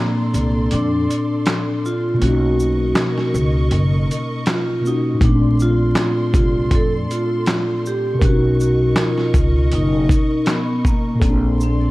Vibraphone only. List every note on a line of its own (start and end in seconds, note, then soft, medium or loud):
0.00 0.74 A#3 medium
0.72 1.88 D4 loud
1.86 2.20 F4 loud
2.23 3.68 F#4 medium
4.50 4.87 F4 medium
4.87 5.24 D#4 medium
5.25 5.62 D4 medium
5.62 6.36 F4 loud
6.37 6.74 F4 medium
6.75 6.91 A4 loud
7.12 7.81 F4 loud
7.87 8.24 G4 loud
8.25 8.61 F#4 loud
8.62 8.99 F#4 medium
9.00 9.75 F4 medium
9.75 10.44 D#4 loud
10.49 10.83 B3 medium
10.88 11.21 A#3 medium
11.24 11.61 A#3 medium
11.63 11.91 C4 medium